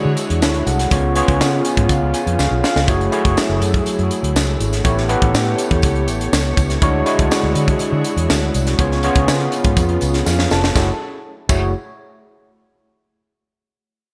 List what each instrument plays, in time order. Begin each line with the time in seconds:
Already playing: string section D3 E4 F#4 G#4 C#5, tine electric piano G#3 D4 E4 F#4 C#5 E5
0.05 fingered electric bass D3
0.17 closed hi-hat, tambourine
0.30 fingered electric bass E2, closed hi-hat
0.42 fingered electric bass D2, tine electric piano E4 C#5, snare, tambourine
0.54 closed hi-hat
0.67 fingered electric bass C2, tine electric piano A4 F#5, closed hi-hat, tambourine
0.79 snare, closed hi-hat
0.91 fingered electric bass C#2, string section C#3 B3 F4, tine electric piano B3 C#4 F4 G#4 C#5, kick, closed hi-hat, tambourine
1.15 tine electric piano B3 C#4 F4 G#4 C#5, closed hi-hat, tambourine
1.28 fingered electric bass C#2, kick, closed hi-hat
1.41 fingered electric bass C#3, snare, tambourine
1.65 tine electric piano G#5, closed hi-hat, tambourine
1.77 fingered electric bass G#2, kick, closed hi-hat
1.89 fingered electric bass C#3, tine electric piano F5, kick, closed hi-hat, tambourine
2.02 fingered electric bass C#2
2.14 tine electric piano G#5, closed hi-hat, tambourine
2.27 fingered electric bass F2, closed hi-hat
2.39 fingered electric bass C#2, tine electric piano F5, snare, tambourine
2.51 fingered electric bass B1
2.64 tine electric piano F5, snare, tambourine
2.76 fingered electric bass C#2, snare
2.88 fingered electric bass F#1, string section F#3 A3 E4 G#4, tine electric piano A3 E4 F#4 G#4 C#5, kick, closed hi-hat, tambourine
3.01 closed hi-hat
3.12 tine electric piano A3 E4 F#4 G#4 C#5, closed hi-hat, tambourine
3.25 fingered electric bass F#1, kick, closed hi-hat
3.37 snare, tambourine
3.49 fingered electric bass F#1
3.61 fingered electric bass F#2, closed hi-hat, tambourine
3.74 kick, closed hi-hat
3.86 muted fingered electric bass stroke, closed hi-hat, tambourine
3.99 fingered electric bass F#2, closed hi-hat
4.11 closed hi-hat, tambourine
4.23 fingered electric bass D2, closed hi-hat
4.35 fingered electric bass C#2, snare, tambourine
4.60 fingered electric bass G#1, closed hi-hat, tambourine
4.73 snare, closed hi-hat
4.84 fingered electric bass A1, string section A3 G4 C#5, tine electric piano B3 E4 G4 A4 C#5, kick, closed hi-hat, tambourine
4.98 snare
5.09 tine electric piano B3 E4 G4 A4 B4, closed hi-hat
5.22 fingered electric bass A1, kick, closed hi-hat
5.34 fingered electric bass A2, snare, tambourine
5.58 closed hi-hat, tambourine
5.71 fingered electric bass E2, kick, closed hi-hat
5.82 fingered electric bass C#2, kick, closed hi-hat, tambourine
5.95 closed hi-hat
6.08 fingered electric bass A1, closed hi-hat, tambourine
6.21 closed hi-hat
6.33 fingered electric bass C#2, snare, tambourine
6.57 fingered electric bass C#2, kick, closed hi-hat, tambourine
6.70 snare, closed hi-hat
6.81 fingered electric bass D2, string section D3 E4 F#4 G#4, tine electric piano G#3 D4 E4 F#4 C#5, kick, closed hi-hat, tambourine
7.06 tine electric piano G#3 D4 E4 F#4 C#5, closed hi-hat, tambourine
7.19 fingered electric bass D2, kick, closed hi-hat
7.31 snare, tambourine
7.43 fingered electric bass D2
7.55 fingered electric bass D3, closed hi-hat, tambourine
7.68 kick, closed hi-hat
7.79 muted fingered electric bass stroke, closed hi-hat, tambourine
7.92 fingered electric bass D3
8.04 closed hi-hat, tambourine
8.17 fingered electric bass E2, closed hi-hat
8.30 fingered electric bass D2, snare, tambourine
8.54 fingered electric bass C2, closed hi-hat, tambourine
8.67 snare, closed hi-hat
8.79 fingered electric bass C#2, string section C#3 B3 F4, tine electric piano B3 C#4 F4 G#4 C#5, kick, closed hi-hat, tambourine
8.92 snare
9.03 tine electric piano B3 C#4 F4 G#4 C#5, closed hi-hat, tambourine
9.15 fingered electric bass C#2, kick, closed hi-hat
9.28 fingered electric bass C#3, snare, tambourine
9.40 closed hi-hat
9.52 closed hi-hat, tambourine
9.64 fingered electric bass G#2, kick, closed hi-hat
9.77 fingered electric bass F2, kick, closed hi-hat, tambourine
9.89 closed hi-hat
10.01 fingered electric bass C#2, closed hi-hat, tambourine
10.14 snare, closed hi-hat
10.26 fingered electric bass F2, tine electric piano F5, snare, tambourine
10.39 snare
10.51 fingered electric bass F1, tine electric piano A5, snare, tambourine
10.64 snare
10.74 fingered electric bass F#1, string section F#3 E4 G#4 A4, tine electric piano A3 E4 F#4 G#4 C#5, kick, snare, tambourine
11.49 fingered electric bass F#1, tine electric piano A3 E4 F#4 G#4 C#5, kick, crash, tambourine